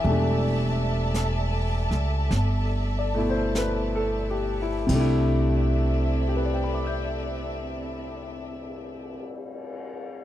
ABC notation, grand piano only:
X:1
M:4/4
L:1/16
Q:"Swing" 1/4=45
K:C
V:1 name="Grand piano"
e2 z8 d c B A G E | z4 [GBdgbd'g']12 |]
V:2 name="Grand piano"
[E,G,A,D]8- [E,G,A,D]2 [B,,A,E]6 | [C,G,A,DE]16 |]